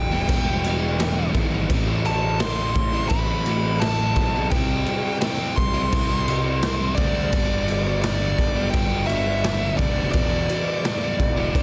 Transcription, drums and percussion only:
0.29 kick loud
0.29 crash medium
0.64 crash medium
1.00 snare loud
1.00 crash medium
1.35 kick medium
1.35 crash medium
1.70 kick loud
1.70 crash medium
2.05 crash medium
2.40 snare loud
2.40 crash medium
2.76 kick medium
2.76 crash medium
3.10 kick loud
3.10 crash medium
3.46 crash medium
3.81 snare loud
3.81 crash medium
4.16 kick medium
4.16 crash medium
4.51 kick loud
4.51 crash medium
4.86 crash medium
5.21 snare loud
5.21 crash medium
5.58 kick medium
5.58 crash medium
5.92 kick loud
5.92 crash medium
6.28 crash medium
6.62 snare loud
6.62 crash medium
6.97 kick loud
6.97 crash medium
7.32 kick loud
7.32 crash medium
7.68 crash medium
8.04 snare loud
8.04 crash medium
8.38 kick medium
8.38 crash medium
8.74 kick loud
8.74 crash medium
9.09 crash medium
9.44 snare loud
9.44 crash medium
9.79 kick medium
9.79 crash medium
10.13 kick loud
10.13 crash medium
10.49 crash medium
10.85 snare loud
10.85 crash medium
11.20 kick medium
11.20 crash medium
11.55 kick loud
11.55 crash medium

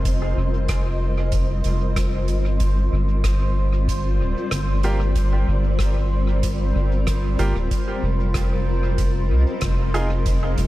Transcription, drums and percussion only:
0.05 kick loud
0.05 closed hi-hat medium
0.68 kick loud
0.68 cross-stick medium
0.68 closed hi-hat medium
1.32 kick loud
1.32 closed hi-hat medium
1.64 closed hi-hat soft
1.96 kick loud
1.96 cross-stick medium
1.96 closed hi-hat medium
2.28 closed hi-hat soft
2.60 kick loud
2.60 closed hi-hat medium
3.24 kick medium
3.24 cross-stick medium
3.24 closed hi-hat medium
3.88 kick loud
3.88 closed hi-hat medium
4.51 kick loud
4.51 cross-stick medium
4.51 closed hi-hat medium
4.83 closed hi-hat soft
5.16 kick medium
5.16 closed hi-hat medium
5.79 kick medium
5.79 cross-stick medium
5.79 closed hi-hat medium
6.43 kick loud
6.43 closed hi-hat medium
7.07 kick loud
7.07 cross-stick medium
7.07 closed hi-hat medium
7.39 closed hi-hat soft
7.71 kick medium
7.71 closed hi-hat medium
8.34 kick medium
8.34 cross-stick medium
8.34 closed hi-hat medium
8.98 kick loud
8.98 closed hi-hat medium
9.61 kick loud
9.61 cross-stick medium
9.61 closed hi-hat medium
9.94 closed hi-hat soft
10.26 kick loud
10.26 closed hi-hat medium
10.58 closed hi-hat soft

